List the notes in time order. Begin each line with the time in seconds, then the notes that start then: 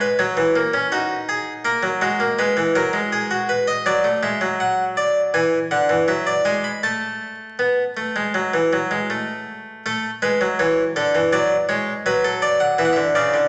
0.01 B4
0.19 F#3 C#5
0.37 E3
0.56 A#3
0.74 C#4
0.92 D#4 F#4
1.29 G#4
1.65 A#3 A#4
1.83 F#3
2.01 G#3 F#4
2.20 A#3
2.39 G#3 B4
2.57 E3
2.75 F#3 A#4
2.93 G#3
3.12 G#4
3.31 F#4
3.49 B4
3.67 D#5
3.86 F#3 D5
4.04 A3
4.23 G#3 E5
4.41 F#3
4.60 F#5
4.97 D5
5.34 E3 G#5
5.71 D3 F#5
5.89 E3
6.08 F#3 E5
6.26 D5
6.45 G#3 G#5
6.64 B5
6.83 A3 A5
7.59 B3
7.97 A3
8.16 G#3
8.34 F#3
8.54 E3
8.73 F#3
8.91 G#3
9.10 A3
9.86 A3 A4
10.22 G#3 B4
10.41 F#3
10.59 E3 C#5
10.96 D3 A4
11.15 E3
11.32 F#3 D5
11.69 G#3 C#5
12.06 F#3 B4
12.24 A4
12.42 D5
12.60 F#5
12.78 E3 E5
12.85 F#5
12.93 D3 E5
13.15 C#3 D5
13.34 D3